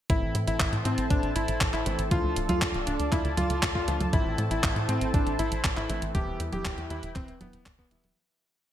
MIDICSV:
0, 0, Header, 1, 6, 480
1, 0, Start_track
1, 0, Key_signature, 0, "minor"
1, 0, Tempo, 504202
1, 92, Time_signature, 4, 2, 24, 8
1, 8301, End_track
2, 0, Start_track
2, 0, Title_t, "Analog synth pad"
2, 0, Program_c, 0, 89
2, 91, Note_on_c, 0, 64, 83
2, 91, Note_on_c, 0, 72, 78
2, 92, Note_on_c, 0, 69, 74
2, 92, Note_on_c, 0, 81, 90
2, 1993, Note_off_c, 0, 64, 0
2, 1993, Note_off_c, 0, 72, 0
2, 1993, Note_off_c, 0, 81, 0
2, 2011, Note_on_c, 0, 65, 84
2, 2011, Note_on_c, 0, 74, 76
2, 2012, Note_on_c, 0, 81, 94
2, 3894, Note_off_c, 0, 69, 0
2, 3913, Note_off_c, 0, 65, 0
2, 3913, Note_off_c, 0, 74, 0
2, 3934, Note_on_c, 0, 64, 85
2, 3934, Note_on_c, 0, 69, 78
2, 3934, Note_on_c, 0, 72, 75
2, 5814, Note_off_c, 0, 81, 0
2, 5834, Note_off_c, 0, 64, 0
2, 5834, Note_off_c, 0, 69, 0
2, 5834, Note_off_c, 0, 72, 0
2, 5853, Note_on_c, 0, 67, 76
2, 5853, Note_on_c, 0, 71, 76
2, 5854, Note_on_c, 0, 64, 85
2, 5854, Note_on_c, 0, 79, 93
2, 7754, Note_off_c, 0, 64, 0
2, 7754, Note_off_c, 0, 67, 0
2, 7754, Note_off_c, 0, 71, 0
2, 7754, Note_off_c, 0, 79, 0
2, 8301, End_track
3, 0, Start_track
3, 0, Title_t, "Electric grand piano"
3, 0, Program_c, 1, 2
3, 92, Note_on_c, 1, 64, 89
3, 342, Note_off_c, 1, 64, 0
3, 453, Note_on_c, 1, 64, 87
3, 702, Note_off_c, 1, 64, 0
3, 812, Note_on_c, 1, 60, 85
3, 979, Note_off_c, 1, 60, 0
3, 1051, Note_on_c, 1, 62, 89
3, 1219, Note_off_c, 1, 62, 0
3, 1292, Note_on_c, 1, 64, 92
3, 1542, Note_off_c, 1, 64, 0
3, 1652, Note_on_c, 1, 64, 88
3, 1902, Note_off_c, 1, 64, 0
3, 2013, Note_on_c, 1, 65, 90
3, 2263, Note_off_c, 1, 65, 0
3, 2373, Note_on_c, 1, 65, 92
3, 2623, Note_off_c, 1, 65, 0
3, 2732, Note_on_c, 1, 62, 84
3, 2899, Note_off_c, 1, 62, 0
3, 2972, Note_on_c, 1, 64, 85
3, 3139, Note_off_c, 1, 64, 0
3, 3211, Note_on_c, 1, 65, 92
3, 3462, Note_off_c, 1, 65, 0
3, 3574, Note_on_c, 1, 65, 91
3, 3823, Note_off_c, 1, 65, 0
3, 3933, Note_on_c, 1, 64, 93
3, 4182, Note_off_c, 1, 64, 0
3, 4293, Note_on_c, 1, 64, 89
3, 4543, Note_off_c, 1, 64, 0
3, 4653, Note_on_c, 1, 60, 82
3, 4819, Note_off_c, 1, 60, 0
3, 4892, Note_on_c, 1, 62, 88
3, 5059, Note_off_c, 1, 62, 0
3, 5133, Note_on_c, 1, 64, 91
3, 5383, Note_off_c, 1, 64, 0
3, 5492, Note_on_c, 1, 64, 90
3, 5742, Note_off_c, 1, 64, 0
3, 5852, Note_on_c, 1, 67, 95
3, 6102, Note_off_c, 1, 67, 0
3, 6213, Note_on_c, 1, 67, 92
3, 6462, Note_off_c, 1, 67, 0
3, 6574, Note_on_c, 1, 64, 85
3, 6740, Note_off_c, 1, 64, 0
3, 6813, Note_on_c, 1, 60, 92
3, 6979, Note_off_c, 1, 60, 0
3, 7053, Note_on_c, 1, 59, 93
3, 7303, Note_off_c, 1, 59, 0
3, 7413, Note_on_c, 1, 59, 93
3, 7663, Note_off_c, 1, 59, 0
3, 8301, End_track
4, 0, Start_track
4, 0, Title_t, "Grand piano"
4, 0, Program_c, 2, 0
4, 93, Note_on_c, 2, 45, 73
4, 93, Note_on_c, 2, 52, 68
4, 93, Note_on_c, 2, 57, 65
4, 93, Note_on_c, 2, 64, 78
4, 94, Note_on_c, 2, 60, 66
4, 1744, Note_off_c, 2, 45, 0
4, 1744, Note_off_c, 2, 52, 0
4, 1744, Note_off_c, 2, 57, 0
4, 1744, Note_off_c, 2, 60, 0
4, 1744, Note_off_c, 2, 64, 0
4, 1773, Note_on_c, 2, 52, 81
4, 1773, Note_on_c, 2, 57, 75
4, 1773, Note_on_c, 2, 60, 77
4, 1773, Note_on_c, 2, 64, 87
4, 1984, Note_off_c, 2, 52, 0
4, 1984, Note_off_c, 2, 57, 0
4, 1984, Note_off_c, 2, 60, 0
4, 1984, Note_off_c, 2, 64, 0
4, 2013, Note_on_c, 2, 53, 72
4, 2013, Note_on_c, 2, 57, 68
4, 2013, Note_on_c, 2, 62, 67
4, 2013, Note_on_c, 2, 65, 82
4, 3664, Note_off_c, 2, 53, 0
4, 3664, Note_off_c, 2, 57, 0
4, 3664, Note_off_c, 2, 62, 0
4, 3664, Note_off_c, 2, 65, 0
4, 3693, Note_on_c, 2, 53, 81
4, 3693, Note_on_c, 2, 57, 76
4, 3693, Note_on_c, 2, 62, 74
4, 3693, Note_on_c, 2, 65, 87
4, 3904, Note_off_c, 2, 53, 0
4, 3904, Note_off_c, 2, 57, 0
4, 3904, Note_off_c, 2, 62, 0
4, 3904, Note_off_c, 2, 65, 0
4, 3934, Note_on_c, 2, 45, 75
4, 3934, Note_on_c, 2, 52, 68
4, 3934, Note_on_c, 2, 57, 71
4, 3934, Note_on_c, 2, 60, 71
4, 3934, Note_on_c, 2, 64, 81
4, 5585, Note_off_c, 2, 45, 0
4, 5585, Note_off_c, 2, 52, 0
4, 5585, Note_off_c, 2, 57, 0
4, 5585, Note_off_c, 2, 60, 0
4, 5585, Note_off_c, 2, 64, 0
4, 5613, Note_on_c, 2, 52, 84
4, 5613, Note_on_c, 2, 57, 76
4, 5613, Note_on_c, 2, 60, 76
4, 5613, Note_on_c, 2, 64, 90
4, 5824, Note_off_c, 2, 52, 0
4, 5824, Note_off_c, 2, 57, 0
4, 5824, Note_off_c, 2, 60, 0
4, 5824, Note_off_c, 2, 64, 0
4, 5853, Note_on_c, 2, 52, 76
4, 5853, Note_on_c, 2, 55, 68
4, 5854, Note_on_c, 2, 59, 69
4, 5854, Note_on_c, 2, 64, 84
4, 7504, Note_off_c, 2, 52, 0
4, 7504, Note_off_c, 2, 55, 0
4, 7504, Note_off_c, 2, 59, 0
4, 7504, Note_off_c, 2, 64, 0
4, 7533, Note_on_c, 2, 52, 82
4, 7533, Note_on_c, 2, 64, 94
4, 7534, Note_on_c, 2, 55, 77
4, 7534, Note_on_c, 2, 59, 75
4, 7744, Note_off_c, 2, 52, 0
4, 7744, Note_off_c, 2, 55, 0
4, 7744, Note_off_c, 2, 59, 0
4, 7744, Note_off_c, 2, 64, 0
4, 8301, End_track
5, 0, Start_track
5, 0, Title_t, "Analog synth bass"
5, 0, Program_c, 3, 38
5, 93, Note_on_c, 3, 33, 98
5, 201, Note_off_c, 3, 33, 0
5, 212, Note_on_c, 3, 33, 74
5, 320, Note_off_c, 3, 33, 0
5, 332, Note_on_c, 3, 45, 91
5, 440, Note_off_c, 3, 45, 0
5, 452, Note_on_c, 3, 33, 76
5, 560, Note_off_c, 3, 33, 0
5, 573, Note_on_c, 3, 33, 94
5, 680, Note_off_c, 3, 33, 0
5, 693, Note_on_c, 3, 45, 78
5, 800, Note_off_c, 3, 45, 0
5, 812, Note_on_c, 3, 45, 93
5, 920, Note_off_c, 3, 45, 0
5, 932, Note_on_c, 3, 33, 80
5, 1040, Note_off_c, 3, 33, 0
5, 1053, Note_on_c, 3, 33, 101
5, 1160, Note_off_c, 3, 33, 0
5, 1172, Note_on_c, 3, 33, 75
5, 1280, Note_off_c, 3, 33, 0
5, 1293, Note_on_c, 3, 33, 92
5, 1401, Note_off_c, 3, 33, 0
5, 1413, Note_on_c, 3, 33, 80
5, 1521, Note_off_c, 3, 33, 0
5, 1533, Note_on_c, 3, 33, 102
5, 1641, Note_off_c, 3, 33, 0
5, 1653, Note_on_c, 3, 33, 74
5, 1761, Note_off_c, 3, 33, 0
5, 1773, Note_on_c, 3, 33, 88
5, 1881, Note_off_c, 3, 33, 0
5, 1893, Note_on_c, 3, 33, 80
5, 2001, Note_off_c, 3, 33, 0
5, 2013, Note_on_c, 3, 38, 97
5, 2120, Note_off_c, 3, 38, 0
5, 2133, Note_on_c, 3, 38, 75
5, 2241, Note_off_c, 3, 38, 0
5, 2253, Note_on_c, 3, 26, 93
5, 2360, Note_off_c, 3, 26, 0
5, 2373, Note_on_c, 3, 38, 78
5, 2481, Note_off_c, 3, 38, 0
5, 2493, Note_on_c, 3, 38, 97
5, 2600, Note_off_c, 3, 38, 0
5, 2612, Note_on_c, 3, 26, 77
5, 2720, Note_off_c, 3, 26, 0
5, 2732, Note_on_c, 3, 26, 94
5, 2840, Note_off_c, 3, 26, 0
5, 2853, Note_on_c, 3, 38, 79
5, 2960, Note_off_c, 3, 38, 0
5, 2973, Note_on_c, 3, 38, 99
5, 3081, Note_off_c, 3, 38, 0
5, 3093, Note_on_c, 3, 38, 77
5, 3200, Note_off_c, 3, 38, 0
5, 3212, Note_on_c, 3, 38, 93
5, 3320, Note_off_c, 3, 38, 0
5, 3333, Note_on_c, 3, 38, 75
5, 3441, Note_off_c, 3, 38, 0
5, 3453, Note_on_c, 3, 38, 104
5, 3561, Note_off_c, 3, 38, 0
5, 3573, Note_on_c, 3, 38, 74
5, 3681, Note_off_c, 3, 38, 0
5, 3693, Note_on_c, 3, 38, 90
5, 3801, Note_off_c, 3, 38, 0
5, 3813, Note_on_c, 3, 38, 78
5, 3921, Note_off_c, 3, 38, 0
5, 3933, Note_on_c, 3, 33, 92
5, 4041, Note_off_c, 3, 33, 0
5, 4054, Note_on_c, 3, 33, 76
5, 4161, Note_off_c, 3, 33, 0
5, 4173, Note_on_c, 3, 45, 93
5, 4281, Note_off_c, 3, 45, 0
5, 4293, Note_on_c, 3, 33, 79
5, 4401, Note_off_c, 3, 33, 0
5, 4413, Note_on_c, 3, 33, 96
5, 4521, Note_off_c, 3, 33, 0
5, 4533, Note_on_c, 3, 45, 76
5, 4641, Note_off_c, 3, 45, 0
5, 4653, Note_on_c, 3, 45, 94
5, 4761, Note_off_c, 3, 45, 0
5, 4774, Note_on_c, 3, 33, 80
5, 4881, Note_off_c, 3, 33, 0
5, 4893, Note_on_c, 3, 33, 102
5, 5001, Note_off_c, 3, 33, 0
5, 5013, Note_on_c, 3, 33, 76
5, 5121, Note_off_c, 3, 33, 0
5, 5133, Note_on_c, 3, 33, 96
5, 5241, Note_off_c, 3, 33, 0
5, 5254, Note_on_c, 3, 33, 78
5, 5361, Note_off_c, 3, 33, 0
5, 5373, Note_on_c, 3, 33, 104
5, 5481, Note_off_c, 3, 33, 0
5, 5493, Note_on_c, 3, 33, 76
5, 5601, Note_off_c, 3, 33, 0
5, 5613, Note_on_c, 3, 33, 91
5, 5721, Note_off_c, 3, 33, 0
5, 5733, Note_on_c, 3, 33, 80
5, 5841, Note_off_c, 3, 33, 0
5, 5854, Note_on_c, 3, 28, 96
5, 5961, Note_off_c, 3, 28, 0
5, 5973, Note_on_c, 3, 28, 77
5, 6080, Note_off_c, 3, 28, 0
5, 6093, Note_on_c, 3, 40, 97
5, 6200, Note_off_c, 3, 40, 0
5, 6213, Note_on_c, 3, 28, 82
5, 6321, Note_off_c, 3, 28, 0
5, 6333, Note_on_c, 3, 28, 101
5, 6441, Note_off_c, 3, 28, 0
5, 6453, Note_on_c, 3, 40, 79
5, 6561, Note_off_c, 3, 40, 0
5, 6574, Note_on_c, 3, 40, 97
5, 6681, Note_off_c, 3, 40, 0
5, 6694, Note_on_c, 3, 28, 82
5, 6801, Note_off_c, 3, 28, 0
5, 6814, Note_on_c, 3, 28, 100
5, 6921, Note_off_c, 3, 28, 0
5, 6933, Note_on_c, 3, 28, 78
5, 7041, Note_off_c, 3, 28, 0
5, 7053, Note_on_c, 3, 28, 94
5, 7161, Note_off_c, 3, 28, 0
5, 7173, Note_on_c, 3, 28, 81
5, 7281, Note_off_c, 3, 28, 0
5, 7293, Note_on_c, 3, 28, 105
5, 7401, Note_off_c, 3, 28, 0
5, 7414, Note_on_c, 3, 28, 75
5, 7521, Note_off_c, 3, 28, 0
5, 7533, Note_on_c, 3, 28, 94
5, 7640, Note_off_c, 3, 28, 0
5, 7653, Note_on_c, 3, 28, 78
5, 7761, Note_off_c, 3, 28, 0
5, 8301, End_track
6, 0, Start_track
6, 0, Title_t, "Drums"
6, 93, Note_on_c, 9, 36, 110
6, 93, Note_on_c, 9, 42, 75
6, 188, Note_off_c, 9, 36, 0
6, 188, Note_off_c, 9, 42, 0
6, 332, Note_on_c, 9, 42, 81
6, 427, Note_off_c, 9, 42, 0
6, 452, Note_on_c, 9, 42, 52
6, 547, Note_off_c, 9, 42, 0
6, 572, Note_on_c, 9, 39, 112
6, 572, Note_on_c, 9, 42, 77
6, 573, Note_on_c, 9, 36, 110
6, 667, Note_off_c, 9, 39, 0
6, 667, Note_off_c, 9, 42, 0
6, 668, Note_off_c, 9, 36, 0
6, 692, Note_on_c, 9, 42, 37
6, 788, Note_off_c, 9, 42, 0
6, 812, Note_on_c, 9, 42, 71
6, 907, Note_off_c, 9, 42, 0
6, 932, Note_on_c, 9, 42, 52
6, 1027, Note_off_c, 9, 42, 0
6, 1051, Note_on_c, 9, 42, 81
6, 1053, Note_on_c, 9, 36, 117
6, 1146, Note_off_c, 9, 42, 0
6, 1148, Note_off_c, 9, 36, 0
6, 1172, Note_on_c, 9, 42, 37
6, 1267, Note_off_c, 9, 42, 0
6, 1292, Note_on_c, 9, 42, 78
6, 1387, Note_off_c, 9, 42, 0
6, 1411, Note_on_c, 9, 42, 55
6, 1506, Note_off_c, 9, 42, 0
6, 1531, Note_on_c, 9, 39, 113
6, 1531, Note_on_c, 9, 42, 76
6, 1533, Note_on_c, 9, 36, 110
6, 1627, Note_off_c, 9, 39, 0
6, 1627, Note_off_c, 9, 42, 0
6, 1628, Note_off_c, 9, 36, 0
6, 1652, Note_on_c, 9, 39, 35
6, 1747, Note_off_c, 9, 39, 0
6, 1772, Note_on_c, 9, 42, 81
6, 1867, Note_off_c, 9, 42, 0
6, 1892, Note_on_c, 9, 42, 54
6, 1987, Note_off_c, 9, 42, 0
6, 2011, Note_on_c, 9, 42, 80
6, 2013, Note_on_c, 9, 36, 117
6, 2106, Note_off_c, 9, 42, 0
6, 2108, Note_off_c, 9, 36, 0
6, 2251, Note_on_c, 9, 42, 83
6, 2346, Note_off_c, 9, 42, 0
6, 2371, Note_on_c, 9, 42, 54
6, 2371, Note_on_c, 9, 63, 73
6, 2467, Note_off_c, 9, 42, 0
6, 2467, Note_off_c, 9, 63, 0
6, 2492, Note_on_c, 9, 39, 118
6, 2492, Note_on_c, 9, 42, 79
6, 2493, Note_on_c, 9, 36, 115
6, 2587, Note_off_c, 9, 39, 0
6, 2587, Note_off_c, 9, 42, 0
6, 2588, Note_off_c, 9, 36, 0
6, 2612, Note_on_c, 9, 42, 35
6, 2707, Note_off_c, 9, 42, 0
6, 2732, Note_on_c, 9, 42, 74
6, 2827, Note_off_c, 9, 42, 0
6, 2852, Note_on_c, 9, 42, 54
6, 2947, Note_off_c, 9, 42, 0
6, 2973, Note_on_c, 9, 36, 121
6, 2973, Note_on_c, 9, 39, 37
6, 2973, Note_on_c, 9, 42, 78
6, 3068, Note_off_c, 9, 36, 0
6, 3068, Note_off_c, 9, 39, 0
6, 3068, Note_off_c, 9, 42, 0
6, 3092, Note_on_c, 9, 42, 37
6, 3187, Note_off_c, 9, 42, 0
6, 3212, Note_on_c, 9, 42, 80
6, 3212, Note_on_c, 9, 63, 71
6, 3308, Note_off_c, 9, 42, 0
6, 3308, Note_off_c, 9, 63, 0
6, 3332, Note_on_c, 9, 42, 53
6, 3427, Note_off_c, 9, 42, 0
6, 3453, Note_on_c, 9, 36, 120
6, 3453, Note_on_c, 9, 39, 123
6, 3453, Note_on_c, 9, 42, 80
6, 3548, Note_off_c, 9, 36, 0
6, 3548, Note_off_c, 9, 39, 0
6, 3548, Note_off_c, 9, 42, 0
6, 3573, Note_on_c, 9, 36, 60
6, 3668, Note_off_c, 9, 36, 0
6, 3693, Note_on_c, 9, 42, 78
6, 3788, Note_off_c, 9, 42, 0
6, 3813, Note_on_c, 9, 42, 55
6, 3813, Note_on_c, 9, 63, 57
6, 3908, Note_off_c, 9, 42, 0
6, 3908, Note_off_c, 9, 63, 0
6, 3933, Note_on_c, 9, 36, 121
6, 3933, Note_on_c, 9, 42, 78
6, 4028, Note_off_c, 9, 36, 0
6, 4028, Note_off_c, 9, 42, 0
6, 4173, Note_on_c, 9, 42, 77
6, 4268, Note_off_c, 9, 42, 0
6, 4294, Note_on_c, 9, 42, 52
6, 4389, Note_off_c, 9, 42, 0
6, 4413, Note_on_c, 9, 36, 120
6, 4413, Note_on_c, 9, 39, 120
6, 4413, Note_on_c, 9, 42, 77
6, 4508, Note_off_c, 9, 36, 0
6, 4508, Note_off_c, 9, 39, 0
6, 4508, Note_off_c, 9, 42, 0
6, 4534, Note_on_c, 9, 42, 36
6, 4629, Note_off_c, 9, 42, 0
6, 4653, Note_on_c, 9, 42, 75
6, 4749, Note_off_c, 9, 42, 0
6, 4773, Note_on_c, 9, 42, 52
6, 4869, Note_off_c, 9, 42, 0
6, 4893, Note_on_c, 9, 36, 122
6, 4893, Note_on_c, 9, 42, 81
6, 4988, Note_off_c, 9, 36, 0
6, 4988, Note_off_c, 9, 42, 0
6, 5013, Note_on_c, 9, 42, 35
6, 5108, Note_off_c, 9, 42, 0
6, 5133, Note_on_c, 9, 42, 80
6, 5228, Note_off_c, 9, 42, 0
6, 5253, Note_on_c, 9, 42, 54
6, 5348, Note_off_c, 9, 42, 0
6, 5372, Note_on_c, 9, 39, 120
6, 5372, Note_on_c, 9, 42, 82
6, 5373, Note_on_c, 9, 36, 119
6, 5467, Note_off_c, 9, 39, 0
6, 5467, Note_off_c, 9, 42, 0
6, 5468, Note_off_c, 9, 36, 0
6, 5493, Note_on_c, 9, 39, 39
6, 5588, Note_off_c, 9, 39, 0
6, 5613, Note_on_c, 9, 42, 79
6, 5708, Note_off_c, 9, 42, 0
6, 5732, Note_on_c, 9, 42, 53
6, 5828, Note_off_c, 9, 42, 0
6, 5853, Note_on_c, 9, 36, 121
6, 5853, Note_on_c, 9, 42, 74
6, 5948, Note_off_c, 9, 36, 0
6, 5948, Note_off_c, 9, 42, 0
6, 6092, Note_on_c, 9, 42, 77
6, 6187, Note_off_c, 9, 42, 0
6, 6212, Note_on_c, 9, 42, 50
6, 6212, Note_on_c, 9, 63, 80
6, 6307, Note_off_c, 9, 42, 0
6, 6307, Note_off_c, 9, 63, 0
6, 6332, Note_on_c, 9, 39, 116
6, 6332, Note_on_c, 9, 42, 74
6, 6333, Note_on_c, 9, 36, 117
6, 6427, Note_off_c, 9, 39, 0
6, 6427, Note_off_c, 9, 42, 0
6, 6428, Note_off_c, 9, 36, 0
6, 6453, Note_on_c, 9, 42, 35
6, 6548, Note_off_c, 9, 42, 0
6, 6573, Note_on_c, 9, 42, 72
6, 6668, Note_off_c, 9, 42, 0
6, 6692, Note_on_c, 9, 42, 49
6, 6788, Note_off_c, 9, 42, 0
6, 6812, Note_on_c, 9, 39, 38
6, 6812, Note_on_c, 9, 42, 79
6, 6813, Note_on_c, 9, 36, 120
6, 6907, Note_off_c, 9, 39, 0
6, 6907, Note_off_c, 9, 42, 0
6, 6909, Note_off_c, 9, 36, 0
6, 6932, Note_on_c, 9, 42, 36
6, 7028, Note_off_c, 9, 42, 0
6, 7052, Note_on_c, 9, 42, 77
6, 7052, Note_on_c, 9, 63, 80
6, 7147, Note_off_c, 9, 42, 0
6, 7147, Note_off_c, 9, 63, 0
6, 7171, Note_on_c, 9, 42, 50
6, 7267, Note_off_c, 9, 42, 0
6, 7292, Note_on_c, 9, 39, 119
6, 7292, Note_on_c, 9, 42, 78
6, 7293, Note_on_c, 9, 36, 124
6, 7387, Note_off_c, 9, 39, 0
6, 7387, Note_off_c, 9, 42, 0
6, 7389, Note_off_c, 9, 36, 0
6, 7414, Note_on_c, 9, 36, 60
6, 7509, Note_off_c, 9, 36, 0
6, 7532, Note_on_c, 9, 42, 75
6, 7627, Note_off_c, 9, 42, 0
6, 7652, Note_on_c, 9, 42, 50
6, 7652, Note_on_c, 9, 63, 61
6, 7747, Note_off_c, 9, 42, 0
6, 7747, Note_off_c, 9, 63, 0
6, 8301, End_track
0, 0, End_of_file